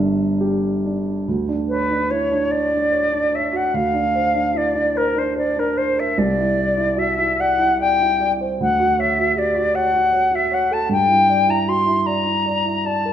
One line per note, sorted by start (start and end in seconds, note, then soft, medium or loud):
0.00 1.23 G1 medium
0.00 1.24 G2 medium
0.00 1.29 D3 soft
0.00 0.24 G3 soft
0.00 0.67 D4 soft
0.00 0.80 A#4 medium
0.00 0.84 E5 medium
0.41 1.10 G4 medium
0.86 1.28 D4 soft
1.28 3.70 D2 medium
1.48 1.81 D4 soft
1.68 2.12 B4 medium
1.68 2.03 C#5 soft
1.91 2.23 D4 soft
2.10 2.31 E4 soft
2.10 2.52 C#5 medium
2.32 2.64 D4 soft
2.51 2.84 C#5 soft
2.51 3.36 D5 medium
2.73 3.05 D4 soft
2.92 3.25 C#5 soft
3.13 3.45 D4 soft
3.33 3.66 C#5 soft
3.33 3.57 E5 medium
3.52 3.73 F#4 soft
3.52 3.76 F#5 medium
3.74 6.13 D2 medium
3.74 4.58 F5 medium
3.94 4.26 D4 soft
4.15 4.47 C5 soft
4.34 4.67 D4 soft
4.54 4.75 E4 soft
4.54 4.98 D5 medium
4.75 5.07 D4 soft
4.96 5.19 A#4 medium
4.96 5.28 C5 soft
5.15 5.48 D4 soft
5.15 5.37 C5 medium
5.36 5.69 C5 soft
5.36 5.60 D5 medium
5.56 5.89 D4 soft
5.56 5.79 A#4 medium
5.77 6.09 C5 soft
5.77 6.01 C5 medium
5.97 6.17 A#4 soft
5.97 6.20 E5 medium
6.18 8.56 C2 medium
6.18 7.00 D5 medium
6.37 6.69 E4 soft
6.58 6.90 D5 soft
6.77 7.09 E4 soft
6.97 7.17 F#4 soft
6.97 7.41 E5 medium
7.18 7.50 E4 soft
7.39 7.71 D5 soft
7.39 7.80 F#5 medium
7.59 7.91 E4 soft
7.80 8.12 D5 soft
7.80 8.32 G5 medium
8.00 8.32 E4 soft
8.20 8.52 D5 soft
8.41 8.60 C5 soft
8.60 10.87 D2 medium
8.60 9.01 F#5 medium
8.80 9.10 F#4 soft
8.99 9.29 C#5 soft
8.99 9.39 E5 medium
9.18 9.48 F#4 soft
9.36 9.55 G4 soft
9.36 9.76 D5 medium
9.55 9.86 F#4 soft
9.74 10.05 C#5 soft
9.74 10.36 F#5 medium
9.94 10.25 F#4 soft
10.13 10.44 C#5 soft
10.32 10.63 F#4 soft
10.32 10.55 E5 medium
10.51 10.83 C#5 soft
10.51 10.74 F#5 medium
10.71 10.91 A4 soft
10.71 10.91 A5 medium
10.89 13.13 G2 medium
10.89 11.51 G5 medium
11.09 11.40 E4 soft
11.29 11.60 D5 soft
11.48 11.79 E4 soft
11.48 11.70 A#5 medium
11.68 11.87 F#4 soft
11.68 12.07 C6 medium
11.86 12.17 E4 soft
12.06 12.37 D5 soft
12.06 12.87 A#5 medium
12.26 12.57 E4 soft
12.46 12.77 D5 soft
12.65 12.97 E4 soft
12.85 13.13 D5 soft
12.85 13.13 A5 medium
13.05 13.13 A#4 soft